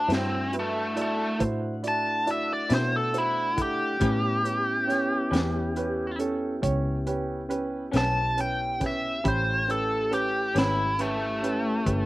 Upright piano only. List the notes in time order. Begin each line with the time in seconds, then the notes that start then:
0.08 E4 F#4 C5
0.53 E4 F#4 B4
0.95 E4 F#4 D5
1.38 E4 F#4 C5
1.83 E4 F#4 D5
2.26 E4 F#4 D5
2.70 E4 F#4 B4
3.13 E4 F#4 C5
3.56 E4 A4 F#5
4.00 C#4 G4 B4
4.43 C#4 G4 B4
4.87 C#4 G4 C#5
5.32 C#4 G4 B4
5.76 C#4 G4 B4
6.19 C#4 G4 A4
6.62 C#4 G4 C#5
7.07 C#4 G4 B4
7.49 C#4 G4 B4
7.94 C#4 G4 B4
8.37 C#4 G4 B4
8.80 C#4 G4 B4
9.24 C#4 G4 B5
9.67 C#4 G4 B4
10.11 C#4 G4 B4
10.55 C#4 G4 B4
10.99 C#4 G4 B4
11.43 C#4 G4 B4
11.86 C#4 G4 B4